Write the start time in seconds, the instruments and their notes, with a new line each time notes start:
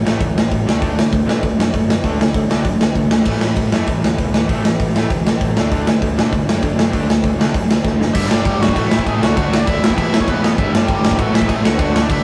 0.05 picked electric bass A1, overdriven electric guitar A2 E3 A3, snare
0.21 picked electric bass D2, overdriven electric guitar A2 E3, kick, open hi-hat
0.36 picked electric bass A1, overdriven electric guitar A2 E3, snare
0.51 picked electric bass A1, overdriven electric guitar A2 E3, kick, open hi-hat
0.66 picked electric bass D2, overdriven electric guitar D3 A3 D4, snare
0.81 picked electric bass D2, overdriven electric guitar D3 A3 D4, kick, open hi-hat
0.96 overdriven electric guitar D3 A3, picked electric bass D3, snare
1.12 picked electric bass D2, overdriven electric guitar D3 A3, kick, open hi-hat
1.25 picked electric bass B2, overdriven electric guitar D3 A3 D4
1.29 snare
1.42 picked electric bass D2, overdriven electric guitar D3 A3, kick, open hi-hat
1.57 picked electric bass F#2, overdriven electric guitar D3 A3, snare
1.73 picked electric bass F#2, overdriven electric guitar D3 A3, kick, open hi-hat
1.88 picked electric bass F#2, overdriven electric guitar D3 A3, snare
2.03 picked electric bass D2, overdriven electric guitar D3 A3 D4, kick, open hi-hat
2.19 picked electric bass D2, overdriven electric guitar D3 A3, snare
2.34 picked electric bass D2, overdriven electric guitar D3 A3, kick, open hi-hat
2.49 picked electric bass D2, overdriven electric guitar D3 A3 D4, snare
2.65 picked electric bass F#2, overdriven electric guitar D3 A3, kick, open hi-hat
2.80 picked electric bass D2, overdriven electric guitar D3 A3, snare
2.95 picked electric bass D2, overdriven electric guitar D3 A3, kick, open hi-hat
3.10 picked electric bass D2, overdriven electric guitar D3 A3, snare
3.25 picked electric bass A1, overdriven electric guitar A2 E3 A3, kick, crash
3.41 picked electric bass A2, overdriven electric guitar A2 E3, snare
3.56 picked electric bass A1, overdriven electric guitar A2 E3, kick, open hi-hat
3.72 picked electric bass F#2, overdriven electric guitar A2 E3 A3, snare
3.87 picked electric bass A1, overdriven electric guitar A2 E3, kick, open hi-hat
4.02 picked electric bass D2, overdriven electric guitar A2 E3, snare
4.18 picked electric bass C#2, overdriven electric guitar A2 E3, kick, open hi-hat
4.33 picked electric bass D2, overdriven electric guitar A2 E3 A3, snare
4.49 picked electric bass A1, overdriven electric guitar A2 E3 A3, kick, open hi-hat
4.63 picked electric bass A1, overdriven electric guitar A2 E3, snare
4.79 picked electric bass A1, overdriven electric guitar A2 E3, kick, open hi-hat
4.96 picked electric bass A1, overdriven electric guitar A2 E3 A3, snare
5.10 picked electric bass D2, overdriven electric guitar A2 E3, kick, open hi-hat
5.26 picked electric bass A1, overdriven electric guitar A2 E3, snare
5.41 picked electric bass A1, overdriven electric guitar A2 E3, kick, open hi-hat
5.57 picked electric bass D2, overdriven electric guitar D3 A3 D4, snare
5.71 picked electric bass D2, overdriven electric guitar D3 A3 D4, kick, open hi-hat
5.87 picked electric bass D3, overdriven electric guitar D3 A3, snare
6.02 picked electric bass D2, overdriven electric guitar D3 A3, kick, open hi-hat
6.16 picked electric bass B2, overdriven electric guitar D3 A3 D4, snare
6.33 picked electric bass D2, overdriven electric guitar D3 A3, kick, open hi-hat
6.47 picked electric bass F#2, overdriven electric guitar D3 A3, snare
6.62 picked electric bass F#2, overdriven electric guitar D3 A3 D4, kick, open hi-hat
6.78 picked electric bass F#2, overdriven electric guitar D3 A3 D4, snare
6.93 picked electric bass D2, overdriven electric guitar D3 A3 D4, kick, open hi-hat
7.08 picked electric bass D2, overdriven electric guitar D3 A3, snare
7.24 picked electric bass D2, overdriven electric guitar D3 A3, kick, open hi-hat
7.38 picked electric bass D2, overdriven electric guitar D3 A3 D4, snare
7.54 picked electric bass F#2, overdriven electric guitar D3 A3, kick, open hi-hat
7.69 picked electric bass D2, overdriven electric guitar D3 A3, snare
7.84 picked electric bass D2, overdriven electric guitar D3 A3 D4, kick, snare
7.99 picked electric bass F#1, overdriven electric guitar D3 A3, snare
8.14 picked electric bass G1, overdriven electric guitar G2 D3 G3, lead electric guitar E4 E5, kick, crash
8.29 picked electric bass G1, overdriven electric guitar G2 D3 G3, lead electric guitar D4 D5, snare
8.44 picked electric bass G1, overdriven electric guitar G2 D3 G3, lead electric guitar G4 G5, kick, crash
8.59 picked electric bass G1, overdriven electric guitar G2 D3 G3, lead electric guitar F#4 F#5
8.63 snare
8.68 kick
8.75 picked electric bass A1, overdriven electric guitar A2 E3 A3, kick, crash
8.89 picked electric bass A1, overdriven electric guitar A2 E3 A3, lead electric guitar E4 E5, snare
8.99 kick
9.06 picked electric bass A1, overdriven electric guitar A2 E3 A3, lead electric guitar G#4 G#5, kick, crash
9.21 picked electric bass D2, overdriven electric guitar D3 A3 D4, lead electric guitar F#4 F#5, snare
9.36 picked electric bass D2, overdriven electric guitar D3 A3 D4, lead electric guitar F#4 F#5, kick, crash
9.51 picked electric bass D2, overdriven electric guitar D3 A3 D4, snare
9.59 lead electric guitar D4 D5
9.66 picked electric bass D#2, overdriven electric guitar D3 A3 D4, lead electric guitar E4 E5, kick, crash
9.82 picked electric bass E1, overdriven electric guitar E2 B2 E3, snare
9.90 kick
9.96 picked electric bass E1, overdriven electric guitar E2 B2 E3, lead electric guitar E4 E5, kick, crash
10.12 picked electric bass E1, overdriven electric guitar E2 B2 E3, snare
10.20 lead electric guitar C#4 C#5, kick
10.27 picked electric bass E1, overdriven electric guitar E2 B2 E3, lead electric guitar B3 B4, kick, crash
10.43 overdriven electric guitar E2 B2 E3, snare
10.58 picked electric bass G1, overdriven electric guitar G2 D3 G3, lead electric guitar E4 E5, kick, crash
10.72 picked electric bass G1, overdriven electric guitar G2 D3 G3, lead electric guitar D4 D5, snare
10.87 picked electric bass G1, overdriven electric guitar G2 D3 G3, lead electric guitar G4 G5, kick, crash
11.03 picked electric bass G1, overdriven electric guitar G2 D3 G3, snare
11.11 kick
11.18 picked electric bass A1, overdriven electric guitar A2 E3 A3, lead electric guitar F#4 F#5, kick, crash
11.33 picked electric bass A1, overdriven electric guitar A2 E3 A3, lead electric guitar E4 E5, snare
11.42 kick
11.48 picked electric bass A1, overdriven electric guitar A2 E3 A3, lead electric guitar G#4 G#5, kick, crash
11.64 picked electric bass D2, overdriven electric guitar D3 A3 D4, lead electric guitar F#4 F#5, snare
11.79 picked electric bass D2, overdriven electric guitar D3 A3 D4, lead electric guitar F#4 F#5, kick, crash
11.94 picked electric bass D2, overdriven electric guitar D3 A3 D4, snare
12.03 lead electric guitar D4 D5
12.10 picked electric bass D2, overdriven electric guitar D3 A3 D4, lead electric guitar E4 E5, kick, crash